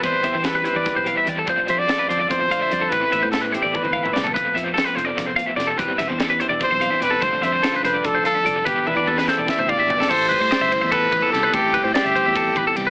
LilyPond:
<<
  \new Staff \with { instrumentName = "Clean electric guitar" } { \time 7/8 \key a \minor \tempo 4 = 146 b'8 e''16 c''16 a'16 b'16 c''16 d''8 c''16 f''16 e''16 d''16 a'16 | c''8 e''16 c''16 a'16 b'16 c''16 d''8 c''16 f''16 e''16 d''16 a'16 | b'8 e''16 c''16 a'16 b'16 c''16 d''8 c''16 f''16 e''16 d''16 a'16 | b'8 e''16 c''16 a'16 b'16 c''16 d''8 c''16 f''16 e''16 d''16 a'16 |
b'8 e''16 c''16 a'16 b'16 c''16 d''8 c''16 f''16 e''16 d''16 a'16 | c''8 e''16 c''16 a'16 b'16 c''16 d''8 c''16 f''16 e''16 d''16 a'16 | b'8 e''16 d''16 a'16 b'16 c''16 d''8 c''16 f''16 e''16 d''16 a'16 | a'8 b'16 c''16 d''16 e''16 c''16 e''16 a'8 b'16 a'16 g'16 b'16 |
a'8 b'16 c''16 d''16 e''16 c''16 e''16 a'8 b'16 a'16 g'16 b'16 | }
  \new Staff \with { instrumentName = "Trumpet" } { \time 7/8 \key a \minor c''4 b'2 r8 | r8 c''16 d''8. d''8 c''4. | b'4 a'8 g'8 b'4 r8 | r2. r8 |
r2 c''4 b'8 | c''8 c''4 b'8 a'8 a'4 | g'8 b'4 a'8 e''8 d''4 | c''2 b'4 a'8 |
g'4 g'2 r8 | }
  \new Staff \with { instrumentName = "Overdriven electric guitar" } { \time 7/8 \key a \minor <e g c' g'>8 <g c' g'>8 <e g c' g'>4. <g c' g'>8 <e g c' g'>8 | <f a d' f'>8 <a d' f'>8 <f a d' f'>4. <a d' f'>8 <f a d' f'>8 | <a, e a c' e'>8 <a c' e'>8 <e a c' e'>4. <a c' e'>8 <a, e a c' e'>8 | <f a c' f'>8 <a c' f'>8 <f a c' f'>4. <a c' f'>8 <f a c' f'>8 |
<e g c' g'>8 <g c' g'>8 <e g c' g'>4. <g c' g'>8 <e g c' g'>8 | <f a d' f'>8 <a d' f'>8 <f a d' f'>4. <a d' f'>8 <f a d' f'>8 | <e b e' g'>8 <b e' g'>8 <e b e' g'>4. <b e' g'>8 <e b e' g'>8 | r2. r8 |
r2. r8 | }
  \new Staff \with { instrumentName = "Clean electric guitar" } { \clef bass \time 7/8 \key a \minor << { <e g d'>8 b16 d'2~ d'8. | r8 c'2. | r8 b2.~ | b8 b2.~ |
b8 b16 d'2~ d'8. | <d g c'>8 c'2. | r8 d'2. | g'8 g8 c'4 g'4 g8 |
c'8 g8 c'4 c'4 g8 | } \\ { e,4. e4. e,8 | f,4. d8 e,8 f,8 g,8 | a,4. e4. e,8 | f,4. f4. c8 |
e,4. e4. e,8 | f,4. d4. f,8 | e,4. e4. b,8 | a,4. e4 e,4 |
a,4. e4 e,4 | } >> }
  \new Staff \with { instrumentName = "Fingered electric bass" } { \clef bass \time 7/8 \key a \minor e,16 r16 e,16 e4 e,16 r16 b,,8 r16 e,8 | f,16 r16 f8 r8 f,8 f,8 r8 f,8 | a,,16 r16 a,,16 a,4 a,,16 r16 g,,8 r16 c,8 | f,,16 r16 f,8 r8 f,,8 f,,8 r8 f,,8 |
e,,16 r16 e,,16 e,4 e,,16 r16 b,,8 r16 e,,8 | f,,16 r16 f,8 r8 f,,8 f,,8 r8 f,,8 | e,,16 r16 e,,16 e,4 e,,16 r16 d,8 r16 g,,8 | a,,8. a,16 r16 g,,8 e,8. a,,16 r16 c,8 |
a,,8. a,16 r16 g,,8 e,8. a,,16 r16 c,8 | }
  \new DrumStaff \with { instrumentName = "Drums" } \drummode { \time 7/8 <hh bd>8 <hh bd>8 <hh sn>8 hh8 <hh bd sn>8 hh8 hh8 | <hh bd>8 hh8 <hh sn>8 hh8 <hh bd>8 hh8 hh8 | <hh bd>8 <hh bd>8 <hh sn>8 hh8 <bd tommh>16 tommh8 toml16 sn16 tomfh16 | <hh bd>8 hh8 <hh sn>8 hh8 <hh bd sn>8 hh8 <hh sn>8 |
<hh bd>8 <hh bd sn>8 <hh sn>8 hh8 <hh bd>8 hh8 hh8 | <hh bd>8 hh8 <hh sn>8 <hh sn>8 <hh bd>8 hh8 hh8 | <hh bd>8 tommh8 tommh16 sn16 sn8 <bd sn>16 toml16 bd8 tomfh16 sn16 | <cymc bd>8 <bd cymr>8 <cymr sn>8 cymr8 <bd cymr>8 <bd cymr>8 <cymr sn>8 |
<bd cymr>8 <bd cymr>8 <cymr sn>8 cymr8 <bd cymr>8 <bd cymr>8 cymr8 | }
>>